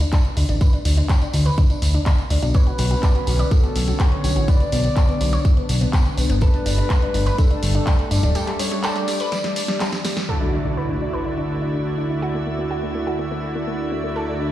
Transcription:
0.01 D4, closed hi-hat, tambourine
0.13 D4, kick, clap, closed hi-hat, tambourine
0.25 closed hi-hat
0.37 D2 D4, open hi-hat, tambourine
0.49 A1 D4, closed hi-hat, tambourine
0.61 B4, kick, closed hi-hat, tambourine
0.73 D4, closed hi-hat
0.85 D2 D4, open hi-hat, tambourine
0.97 D4, closed hi-hat, tambourine
1.09 C#5, kick, clap, closed hi-hat, tambourine
1.21 D4, closed hi-hat, tambourine
1.33 D2 D4, open hi-hat, tambourine
1.45 B4, closed hi-hat, tambourine
1.58 D4, kick, closed hi-hat, tambourine
1.70 D4, closed hi-hat, tambourine
1.82 D2, open hi-hat, tambourine
1.94 D4, closed hi-hat, tambourine
2.06 D4, kick, clap, closed hi-hat, tambourine
2.18 closed hi-hat
2.30 D2 D4, open hi-hat, tambourine
2.43 B1 D4, closed hi-hat, tambourine
2.54 D3 B3 C#4 B4 C#5, kick, closed hi-hat, tambourine
2.67 F#4, closed hi-hat
2.78 B1 F#4, open hi-hat, tambourine
2.91 F#4, closed hi-hat, tambourine
3.03 D5, kick, clap, closed hi-hat, tambourine
3.15 F#4, closed hi-hat
3.27 B1 F#4, open hi-hat, tambourine
3.39 D5, closed hi-hat, tambourine
3.51 F#4 A4, kick, closed hi-hat, tambourine
3.64 F#4, closed hi-hat
3.76 B1, open hi-hat, tambourine
3.88 F#4, closed hi-hat, tambourine
3.99 F#4 C#5, kick, clap, closed hi-hat, tambourine
4.12 closed hi-hat
4.24 B1 F#4, open hi-hat, tambourine
4.36 A1 F#4, closed hi-hat, tambourine
4.48 D4 B4 D5, kick, closed hi-hat, tambourine
4.60 B3, closed hi-hat
4.72 B1 B3, open hi-hat, tambourine
4.83 B3, closed hi-hat, tambourine
4.97 C#5, kick, clap, closed hi-hat, tambourine
5.09 B3, closed hi-hat
5.21 B1 B3, open hi-hat, tambourine
5.33 C#5, closed hi-hat, tambourine
5.45 B3, kick, closed hi-hat, tambourine
5.57 B3, closed hi-hat
5.69 B1, open hi-hat, tambourine
5.81 B3, closed hi-hat, tambourine
5.93 B3, kick, clap, closed hi-hat, tambourine
6.05 closed hi-hat
6.18 B1 B3, open hi-hat, tambourine
6.30 G1 B3, closed hi-hat, tambourine
6.41 G3 A3 A4 B4, kick, closed hi-hat, tambourine
6.54 D4, closed hi-hat
6.66 G1 D4, open hi-hat, tambourine
6.78 D4, closed hi-hat, tambourine
6.90 B4, kick, clap, closed hi-hat, tambourine
7.02 D4, closed hi-hat
7.14 G1 D4, open hi-hat, tambourine
7.26 B4, closed hi-hat, tambourine
7.38 D4 A4, kick, closed hi-hat, tambourine
7.51 D4, closed hi-hat
7.63 G1, open hi-hat, tambourine
7.74 D4, closed hi-hat, tambourine
7.87 D4, kick, clap, closed hi-hat, tambourine
7.99 closed hi-hat
8.11 G1 D4, open hi-hat, tambourine
8.23 D1 D4, closed hi-hat
8.35 G4 A4, closed hi-hat, tambourine
8.47 G3, clap, closed hi-hat
8.59 G3 C#5, open hi-hat, tambourine
8.72 G3, closed hi-hat, tambourine
8.83 A4 D5, clap, closed hi-hat, tambourine
8.96 G3, closed hi-hat, tambourine
9.08 G3, open hi-hat, tambourine
9.20 B4, closed hi-hat, tambourine
9.32 G3, snare, closed hi-hat, tambourine
9.44 G3, snare, closed hi-hat
9.56 open hi-hat, tambourine
9.68 G3, snare, closed hi-hat
9.80 G3, snare, clap, closed hi-hat, tambourine
9.93 snare, closed hi-hat, tambourine
10.05 G3, snare, open hi-hat, tambourine
10.17 G3, snare, closed hi-hat, tambourine
10.29 D2 D3 A3 E4 F#4 A4 D5 E5 E6, impact
10.41 D4
10.53 D4
10.65 D4
10.77 B4
10.89 D4
11.01 D4
11.13 B4
11.26 D4
11.38 D4
11.62 D4
11.74 D4
11.98 D4
12.10 D4
12.22 F#4
12.34 A3
12.46 A3
12.59 A3
12.71 F#4
12.83 A3
12.95 A3
13.07 F#4
13.19 A3
13.31 A3
13.55 A3
13.67 A3
13.92 A3
14.04 A3
14.16 D3 A3 E4 F#4 A4 D5
14.28 D4
14.40 D4

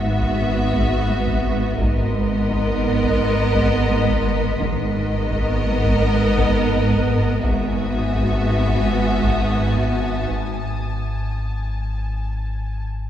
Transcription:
Already playing: G#1 G#2 B3 F#4 E5
0.04 G#2
0.22 taiko
0.40 G#3
0.74 G#3, taiko
1.11 G#2
1.27 taiko
1.46 G#2
1.78 G#1 G#2 B3 A#4 D#5 C6 B6, taiko
2.16 G#2
2.50 G#3, taiko
2.85 G#2
3.03 taiko
3.20 G#3
3.55 G#3, taiko
3.91 G#2
4.07 taiko
4.26 G#2
4.60 G#1 G#2 B3 A#4 D#5, taiko
4.96 G#2
5.22 C#6
5.31 G#3, taiko
5.68 G#2
5.85 taiko
6.03 G#3
6.37 G#3, taiko
6.74 G#2
6.91 taiko
7.09 G#2
7.43 G#1 G#2 B3 F#4 E5 G#5 D#6, taiko
7.80 G#2
8.15 G#3 A5, taiko
8.51 G#2
8.68 taiko
8.87 G#3
9.21 G#3, taiko
9.57 G#2
9.75 taiko
9.93 G#2
10.31 G#1

